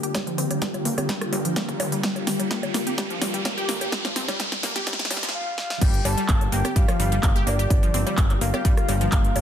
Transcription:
Already playing: analog synth bass G1, ambient pad D3 G3 A#3 F4 G4, riser
0.03 synth pluck G4, closed hi-hat
0.14 analog synth bass G1, kick, snare, closed hi-hat, high bongo
0.27 synth pluck F3, closed hi-hat
0.38 analog synth bass G1, synth pluck C4, open hi-hat
0.50 synth pluck G3, closed hi-hat, high bongo
0.62 analog synth bass G1, synth pluck G3, kick, snare, closed hi-hat
0.74 closed hi-hat, high bongo
0.85 analog synth bass G1, synth pluck A#3, open hi-hat
0.98 synth pluck G4, cross-stick, closed hi-hat, high bongo, high conga
1.09 analog synth bass G2, synth pluck G3, kick, snare, closed hi-hat
1.21 cross-stick, closed hi-hat
1.33 analog synth bass G1, synth pluck G3, open hi-hat, high bongo
1.45 synth pluck F3, closed hi-hat
1.56 analog synth bass G1, synth pluck A#3, kick, snare, closed hi-hat, high bongo
1.69 kick, closed hi-hat
1.80 analog synth bass G1, open hi-hat, high bongo
1.92 synth pluck G3, closed hi-hat
2.03 analog synth bass G1, synth pluck G3, kick, snare, closed hi-hat
2.16 closed hi-hat, high bongo
2.27 analog synth bass G1, synth pluck G3, snare, open hi-hat
2.39 synth pluck G3, closed hi-hat, high bongo
2.51 analog synth bass G1, synth pluck A#3, kick, snare, closed hi-hat
2.63 closed hi-hat, high bongo
2.74 analog synth bass G1, synth pluck A#3, snare, open hi-hat
2.87 synth pluck G4, closed hi-hat, high conga
2.98 analog synth bass G2, synth pluck G4, kick, snare, closed hi-hat, high bongo
3.10 synth pluck F3, closed hi-hat
3.21 analog synth bass G1, synth pluck G3, snare, open hi-hat, high bongo
3.34 synth pluck G3, closed hi-hat
3.45 synth pluck A#3, kick, snare, closed hi-hat, high bongo
3.57 synth pluck G4, closed hi-hat
3.69 synth pluck A#3, snare, open hi-hat
3.81 synth pluck G4, closed hi-hat, high bongo
3.92 kick, snare, closed hi-hat
4.05 synth pluck F3, snare, closed hi-hat, high bongo
4.16 analog synth bass G1, synth pluck C4, snare, open hi-hat
4.28 synth pluck G3, snare, closed hi-hat, high bongo
4.40 analog synth bass G1, synth pluck G3, kick, snare, closed hi-hat
4.52 snare, closed hi-hat
4.63 analog synth bass G1, synth pluck A#3, snare, open hi-hat, high bongo
4.76 synth pluck G4, snare, closed hi-hat, high conga
4.87 analog synth bass G2, synth pluck G3, kick, snare, closed hi-hat, high bongo
4.93 snare
4.99 snare, closed hi-hat
5.05 snare
5.10 analog synth bass G1, synth pluck G3, snare, open hi-hat, high bongo
5.17 snare
5.23 synth pluck F3, snare, closed hi-hat
5.29 snare
5.34 soft synth lead F5
5.58 snare
5.70 snare
5.81 analog synth bass G1, ambient pad D3 G3 A#3 F4 G4, synth pluck G3, soft synth lead G5, kick, closed hi-hat, crash, high bongo
5.94 closed hi-hat
6.05 analog synth bass G1, synth pluck G3, soft synth lead A5, open hi-hat, high bongo
6.17 synth pluck G3, closed hi-hat
6.29 analog synth bass G1, synth pluck A#3, kick, clap, closed hi-hat
6.41 closed hi-hat, high bongo
6.52 analog synth bass G1, synth pluck A#3, soft synth lead G5, open hi-hat
6.65 synth pluck G4, cross-stick, closed hi-hat, high bongo, high conga
6.76 analog synth bass G2, synth pluck G4, soft synth lead F5, kick, closed hi-hat
6.88 synth pluck F3, cross-stick, closed hi-hat, high bongo
7.00 analog synth bass G1, synth pluck G3, open hi-hat
7.12 synth pluck G3, closed hi-hat
7.23 analog synth bass G1, synth pluck A#3, kick, clap, closed hi-hat, high bongo
7.36 synth pluck G4, closed hi-hat
7.47 analog synth bass G1, synth pluck A#3, soft synth lead D5, open hi-hat, high bongo
7.59 synth pluck G4, closed hi-hat
7.70 analog synth bass G1, soft synth lead D5, kick, closed hi-hat, high bongo
7.83 synth pluck F3, closed hi-hat
7.94 analog synth bass G1, synth pluck C4, open hi-hat
8.06 synth pluck G3, closed hi-hat, high bongo
8.17 analog synth bass G1, synth pluck G3, kick, clap, closed hi-hat
8.30 clap, closed hi-hat, high bongo
8.41 analog synth bass G1, synth pluck A#3, soft synth lead F5, open hi-hat
8.54 synth pluck G4, cross-stick, closed hi-hat, high bongo, high conga
8.65 analog synth bass G2, synth pluck G3, kick, closed hi-hat
8.77 cross-stick, closed hi-hat
8.88 analog synth bass G1, synth pluck G3, open hi-hat, high bongo
9.01 synth pluck F3, closed hi-hat
9.12 analog synth bass G1, synth pluck A#3, soft synth lead F5, kick, clap, closed hi-hat, high bongo
9.24 closed hi-hat
9.36 analog synth bass G1, open hi-hat, high bongo

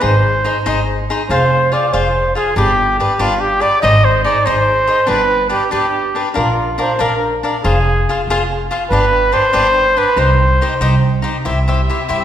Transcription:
0.00 upright bass G#1, cavaquinho D#4 G#4 C5 D#5, trumpet C5
0.44 cavaquinho D#4 G#4 C5 D#5
0.66 upright bass G#1, cavaquinho D#4 G#4 C5 D#5
1.10 cavaquinho D#4 G#4 C5 D#5
1.29 upright bass F1, cavaquinho F4 G#4 C5 F5, trumpet C5
1.72 cavaquinho F4 G#4 C5 F5, trumpet D5
1.93 upright bass F1, cavaquinho F4 G#4 C5 F5, trumpet C5
2.35 cavaquinho F4 G#4 C5 F5, trumpet G#4
2.56 upright bass G1, cavaquinho D4 G4 B4 D5, trumpet G4
2.99 cavaquinho D4 G4 B4 D5, trumpet G4
3.19 upright bass G1, cavaquinho D4 G4 B4 D5, trumpet F4
3.41 trumpet G4
3.60 cavaquinho D4 G4 B4 D5, trumpet D5
3.82 upright bass G#1, cavaquinho D#4 G#4 C5 D#5, trumpet D#5
4.04 trumpet C5
4.24 cavaquinho D#4 G#4 C5 D#5, trumpet D5
4.46 upright bass G#1, cavaquinho D#4 G#4 C5 D#5, trumpet C5
4.87 cavaquinho D#4 G#4 C5 D#5
5.07 upright bass G1, cavaquinho D4 G4 B4 D5, trumpet B4
5.49 cavaquinho D4 G4 B4 D5, trumpet G4
5.71 upright bass G1, cavaquinho D4 G4 B4 D5, trumpet G4
6.15 cavaquinho D4 G4 B4 D5
6.34 upright bass A#1, cavaquinho D4 A#4 D5 F5, trumpet F4
6.78 cavaquinho D4 A#4 D5 F5, trumpet C5
6.99 upright bass A#1, cavaquinho D4 A#4 D5 F5, trumpet A#4
7.43 cavaquinho D4 A#4 D5 F5
7.64 upright bass F1, cavaquinho F4 G#4 C5 F5, trumpet G#4
8.09 cavaquinho F4 G#4 C5 F5
8.27 upright bass F1, cavaquinho F4 G#4 C5 F5
8.71 cavaquinho F4 G#4 C5 F5
8.91 upright bass G1, cavaquinho D4 G4 B4 D5, trumpet B4
9.32 cavaquinho D4 G4 B4 D5, trumpet C5
9.53 upright bass G1, cavaquinho D4 G4 B4 D5
9.97 cavaquinho D4 G4 B4 D5, trumpet B4
10.16 upright bass C2, cavaquinho D#4 G4 C5 D#5, trumpet C5
10.61 cavaquinho D#4 G4 C5 D#5
10.80 upright bass C2, cavaquinho D#4 G4 C5 D#5
11.22 cavaquinho D#4 G4 C5 D#5
11.43 upright bass C2, violin section C4 G4 E5, cavaquinho E4 G4 C5 E5
11.68 cavaquinho E4 G4 C5 E5
11.90 cavaquinho E4 G4 C5 E5
12.09 upright bass G2, cavaquinho E4 G4 C5 E5

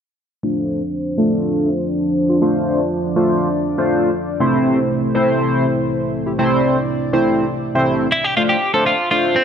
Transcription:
0.43 analog synth pad F3 D4 C5, analog polysynth A3 D4 F4 C5
1.18 analog polysynth A3 D4 F4 A4
2.29 analog polysynth F4 C5
2.42 analog polysynth A3 D4 F4 C5, analog synth pad D5
3.16 analog polysynth A3 D4 F4 C5
3.78 analog polysynth A3 D4 F4 C5
4.40 analog polysynth C3 A3 C4 E4 C5, analog synth pad C3 A3 E4 C5
5.15 analog polysynth C3 A3 C4 E4 C5
6.26 analog polysynth E4 G4
6.38 analog polysynth C3 A3 C4 E4 C5, analog synth pad D5
7.13 analog polysynth C3 A3 C4 E4 C5
7.75 analog polysynth C3 A3 C4 E4 C5
8.12 clean electric guitar E4
8.24 clean electric guitar G4
8.37 analog polysynth A3 D4 F4 C5, clean electric guitar F4
8.49 clean electric guitar G4
8.74 analog polysynth A3 D4 F4 C5, clean electric guitar A4
8.86 clean electric guitar F4
9.11 analog polysynth A3 D4 F4 C5, clean electric guitar F4
9.36 clean electric guitar C4

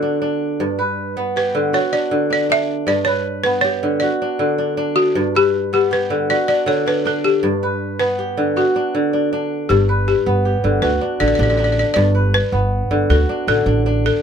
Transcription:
Already playing: kora D3 B3 F#4 G4
0.02 kora D4
0.22 kora D4
0.60 kora G2
0.79 kora B4
1.17 kora B3
1.36 kora G4, balafon B4
1.55 kora D3
1.73 kora F#4, balafon C#5
1.92 kora D4, balafon D5
2.11 kora D3
2.30 kora D4, balafon D5
2.50 kora D4, balafon E5
2.87 kora G2, balafon D5
3.05 kora B4, balafon C#5
3.44 kora B3, balafon B4
3.61 kora G4, balafon C#5
3.83 kora D3
4.00 kora F#4, balafon D5
4.22 kora D4
4.39 kora D3
4.58 kora D4
4.77 kora D4
4.96 balafon F#4
5.15 kora G2
5.35 balafon G4, kora B4
5.73 kora B3, balafon G4
5.91 kora G4, balafon B4
6.10 kora D3
6.30 kora F#4, balafon D5
6.48 kora D4, balafon D5
6.66 kora D3, balafon C#5
6.86 kora D4, balafon B4
7.05 kora D4, balafon A4
7.24 balafon G4
7.43 kora G2
7.63 kora B4
7.99 kora B3, balafon B4
8.19 kora G4
8.37 kora D3
8.56 kora F#4, balafon F#4
8.76 kora D4
8.95 kora D3
9.13 kora D4
9.33 kora D4
9.69 upright bass G1, kora G2, balafon G4
9.89 kora B4
10.08 balafon G4
10.26 upright bass G1, kora B3
10.45 kora G4
10.64 upright bass G1, kora D3
10.82 upright bass D2, kora F#4, balafon B4
11.01 kora D4
11.20 upright bass A1, kora D3, balafon D5
11.28 balafon D5
11.35 upright bass A1, kora D4, balafon D5
11.43 balafon D5
11.50 balafon D5
11.57 kora D4, balafon D5
11.64 balafon D5
11.72 balafon D5
11.79 balafon D5
11.94 upright bass G1, kora G2, balafon D5
12.15 kora B4
12.34 balafon B4
12.52 upright bass G1, kora B3
12.91 upright bass G1, kora D3
13.10 upright bass D2, kora F#4, balafon A4
13.29 kora D4
13.47 upright bass A1, kora D3, balafon A4
13.66 upright bass A1, kora D4
13.86 kora D4
14.06 balafon A4

